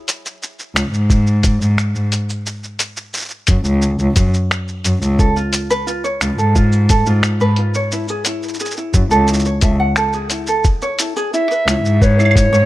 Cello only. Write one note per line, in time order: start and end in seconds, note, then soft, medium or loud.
0.75 0.88 C#2 medium
0.92 1.54 G#2 medium
1.61 1.74 G#2 medium
1.95 2.08 G#2 medium
3.48 3.61 F#2 medium
3.66 3.91 C#2 loud
4.00 4.13 C#2 loud
4.16 4.29 F#2 medium
4.85 4.98 F#2 medium
5.03 5.15 C#2 medium
6.22 6.34 C#2 medium
6.39 7.00 G#2 loud
7.07 7.19 G#2 loud
7.41 7.53 G#2 medium
8.94 9.07 F#2 medium
9.11 9.36 C#2 medium
9.62 9.75 C#2 medium
11.67 11.80 C#2 medium
11.84 12.45 G#2 loud
12.52 12.65 G#2 loud